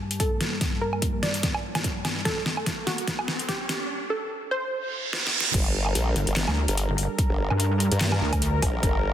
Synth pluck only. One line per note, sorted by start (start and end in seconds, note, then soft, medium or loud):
0.00 0.12 G4 medium
0.20 0.74 A4 medium
0.81 1.12 A#4 medium
1.23 2.18 D5 medium
2.25 2.80 A4 loud
2.87 3.41 F#4 medium
3.48 4.03 G4 medium
4.10 4.41 A4 medium
4.51 5.47 C5 loud